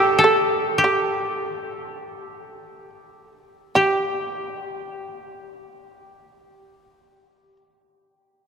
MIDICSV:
0, 0, Header, 1, 3, 480
1, 0, Start_track
1, 0, Tempo, 1167315
1, 347, Time_signature, 2, 2, 24, 8
1, 347, Tempo, 1330377
1, 827, Tempo, 1600000
1, 1307, Tempo, 1685393
1, 1787, Tempo, 1595745
1, 2693, End_track
2, 0, Start_track
2, 0, Title_t, "Koto"
2, 0, Program_c, 0, 107
2, 0, Note_on_c, 0, 67, 58
2, 0, Note_on_c, 0, 69, 72
2, 75, Note_off_c, 0, 69, 0
2, 76, Note_on_c, 0, 69, 58
2, 320, Note_off_c, 0, 67, 0
2, 321, Note_on_c, 0, 67, 52
2, 796, Note_off_c, 0, 69, 0
2, 1035, Note_off_c, 0, 67, 0
2, 1303, Note_on_c, 0, 67, 46
2, 2422, Note_off_c, 0, 67, 0
2, 2693, End_track
3, 0, Start_track
3, 0, Title_t, "Shamisen"
3, 0, Program_c, 1, 106
3, 0, Note_on_c, 1, 67, 55
3, 97, Note_off_c, 1, 67, 0
3, 99, Note_on_c, 1, 69, 53
3, 328, Note_off_c, 1, 69, 0
3, 345, Note_on_c, 1, 67, 47
3, 1044, Note_off_c, 1, 67, 0
3, 1300, Note_on_c, 1, 67, 52
3, 2419, Note_off_c, 1, 67, 0
3, 2693, End_track
0, 0, End_of_file